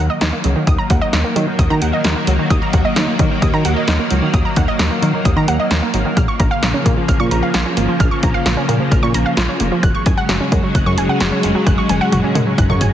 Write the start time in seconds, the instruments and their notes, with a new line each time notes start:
Already playing: string machine D#3 F#3 A#3
0.10 synth arpeggio sound D#5
0.21 analog synth bass D#2, synth arpeggio sound D#4, snare, closed hi-hat
0.33 synth arpeggio sound A#3
0.44 analog synth bass C#2, synth arpeggio sound F#3, closed hi-hat
0.56 synth arpeggio sound D#3
0.67 analog synth bass D#2, synth arpeggio sound D#6, kick, closed hi-hat
0.78 synth arpeggio sound A#5
0.90 analog synth bass D#2, synth arpeggio sound F#5, kick, closed hi-hat
1.01 synth arpeggio sound D#5
1.13 analog synth bass D#2, synth arpeggio sound D#4, snare, closed hi-hat
1.24 synth arpeggio sound A#3
1.36 analog synth bass D#3, synth arpeggio sound F#3, closed hi-hat
1.47 synth arpeggio sound D#3
1.59 analog synth bass D#2, synth arpeggio sound D#6, kick, closed hi-hat
1.70 analog synth bass D#3, synth arpeggio sound A#5
1.82 analog synth bass D#2, synth arpeggio sound F#5, closed hi-hat
1.93 synth arpeggio sound D#5
2.04 analog synth bass D#2, synth arpeggio sound D#4, snare, closed hi-hat
2.16 synth arpeggio sound A#3
2.27 analog synth bass C#2, synth arpeggio sound F#3, closed hi-hat
2.39 synth arpeggio sound D#3
2.50 analog synth bass D#2, synth arpeggio sound D#6, kick, closed hi-hat
2.62 synth arpeggio sound A#5
2.73 analog synth bass D#2, synth arpeggio sound F#5, kick, closed hi-hat
2.85 synth arpeggio sound D#5
2.96 analog synth bass D#2, synth arpeggio sound D#4, snare, closed hi-hat
3.08 synth arpeggio sound A#3
3.19 analog synth bass D#3, synth arpeggio sound F#3, kick, closed hi-hat
3.31 synth arpeggio sound D#3
3.42 analog synth bass D#2, synth arpeggio sound D#6, kick, closed hi-hat
3.54 analog synth bass D#3, synth arpeggio sound A#5
3.65 analog synth bass D#2, synth arpeggio sound F#5, closed hi-hat
3.76 synth arpeggio sound D#5
3.88 analog synth bass D#2, synth arpeggio sound D#4, snare, closed hi-hat
3.99 synth arpeggio sound A#3
4.10 analog synth bass C#2, synth arpeggio sound F#3, closed hi-hat
4.22 synth arpeggio sound D#3
4.34 analog synth bass D#2, synth arpeggio sound D#6, kick, closed hi-hat
4.45 synth arpeggio sound A#5
4.56 analog synth bass D#2, synth arpeggio sound F#5, kick, closed hi-hat
4.68 synth arpeggio sound D#5
4.79 analog synth bass D#2, synth arpeggio sound D#4, snare, closed hi-hat
4.91 synth arpeggio sound A#3
5.02 analog synth bass D#3, synth arpeggio sound F#3, closed hi-hat
5.14 synth arpeggio sound D#3
5.25 analog synth bass D#2, synth arpeggio sound D#6, kick, closed hi-hat
5.36 analog synth bass D#3, synth arpeggio sound A#5
5.48 analog synth bass D#2, synth arpeggio sound F#5, closed hi-hat
5.59 synth arpeggio sound D#5
5.71 analog synth bass D#2, synth arpeggio sound D#4, snare, closed hi-hat
5.82 synth arpeggio sound A#3
5.94 analog synth bass G#1, synth arpeggio sound F#3, closed hi-hat
6.05 synth arpeggio sound D#3
6.17 analog synth bass A#1, string machine C#3 F3, synth arpeggio sound F6, kick, closed hi-hat
6.28 synth arpeggio sound C#6
6.39 analog synth bass A#1, synth arpeggio sound A#5, kick, closed hi-hat
6.51 synth arpeggio sound F5
6.62 analog synth bass A#1, synth arpeggio sound F4, snare, closed hi-hat
6.74 synth arpeggio sound C#4
6.85 analog synth bass A#2, synth arpeggio sound A#3, kick, closed hi-hat
6.97 synth arpeggio sound F3
7.08 analog synth bass A#1, synth arpeggio sound F6, kick, closed hi-hat
7.20 analog synth bass A#2, synth arpeggio sound C#6
7.31 analog synth bass A#1, synth arpeggio sound A#5, closed hi-hat
7.43 synth arpeggio sound F5
7.54 analog synth bass A#1, synth arpeggio sound F4, snare, closed hi-hat
7.66 synth arpeggio sound C#4
7.77 analog synth bass G#1, synth arpeggio sound A#3, closed hi-hat
7.88 synth arpeggio sound F3
8.00 analog synth bass A#1, synth arpeggio sound F6, kick, closed hi-hat
8.11 synth arpeggio sound C#6
8.23 analog synth bass A#1, synth arpeggio sound A#5, kick, closed hi-hat
8.34 synth arpeggio sound F5
8.46 analog synth bass A#1, synth arpeggio sound F4, snare, closed hi-hat
8.57 synth arpeggio sound C#4
8.68 analog synth bass A#2, synth arpeggio sound A#3, closed hi-hat
8.80 synth arpeggio sound F3
8.91 analog synth bass A#1, synth arpeggio sound F6, kick, closed hi-hat
9.03 analog synth bass A#2, synth arpeggio sound C#6
9.14 analog synth bass A#1, synth arpeggio sound A#5, closed hi-hat
9.26 synth arpeggio sound F5
9.37 analog synth bass A#1, synth arpeggio sound F4, snare, closed hi-hat
9.49 synth arpeggio sound C#4
9.60 analog synth bass F1, synth arpeggio sound A#3, closed hi-hat
9.72 synth arpeggio sound F3
9.83 analog synth bass F#1, string machine C#3 F#3 G#3, synth arpeggio sound F#6, kick, closed hi-hat
9.95 synth arpeggio sound C#6
10.06 analog synth bass F#1, synth arpeggio sound G#5, kick, closed hi-hat
10.17 synth arpeggio sound F#5
10.29 analog synth bass F#1, synth arpeggio sound F#4, snare, closed hi-hat
10.40 synth arpeggio sound C#4
10.52 analog synth bass F#2, synth arpeggio sound G#3, kick, closed hi-hat
10.63 synth arpeggio sound F#3
10.75 analog synth bass F#1, synth arpeggio sound F#6, kick, closed hi-hat
10.86 analog synth bass F#2, synth arpeggio sound C#6
10.98 analog synth bass F#1, synth arpeggio sound G#5, closed hi-hat
11.09 synth arpeggio sound F#5
11.20 analog synth bass F#1, synth arpeggio sound F#4, snare, closed hi-hat
11.32 synth arpeggio sound C#4
11.43 analog synth bass F1, synth arpeggio sound G#3, closed hi-hat
11.55 synth arpeggio sound F#3
11.66 analog synth bass F#1, synth arpeggio sound F#6, kick, closed hi-hat, high tom
11.78 synth arpeggio sound C#6
11.89 analog synth bass F#1, synth arpeggio sound G#5, closed hi-hat, high tom
12.01 synth arpeggio sound F#5
12.12 analog synth bass F#1, synth arpeggio sound F#4, closed hi-hat, mid tom
12.24 synth arpeggio sound C#4
12.35 analog synth bass F#2, synth arpeggio sound G#3, closed hi-hat, mid tom
12.47 synth arpeggio sound F#3
12.58 analog synth bass F#1, synth arpeggio sound F#6, kick, closed hi-hat, mid tom
12.70 analog synth bass F#2, synth arpeggio sound C#6, mid tom
12.81 analog synth bass F#1, synth arpeggio sound G#5, closed hi-hat, mid tom